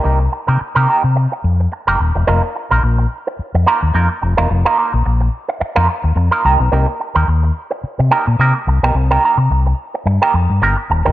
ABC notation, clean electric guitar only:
X:1
M:4/4
L:1/16
Q:"Swing 16ths" 1/4=108
K:Fdor
V:1 name="Clean electric guitar"
[B,EGB] z2 [B,EGB] z [B,EGB] [B,EGB] z6 [B,EGB] z2 | [B,EFB] z2 [B,EFB] z6 [B,EFB] z [B,EFB] z2 [B,EFB] | z [B,EFB] [B,EFB] z6 [B,EFB] z3 [B,EFB] [B,EGB] z | [B,EGB] z2 [B,EGB] z6 [B,EGB] z [B,EGB] z2 [B,EGB] |
z [B,EGB] [B,EGB] z6 [B,EGB] z2 [B,EGB] z2 [B,EGB] |]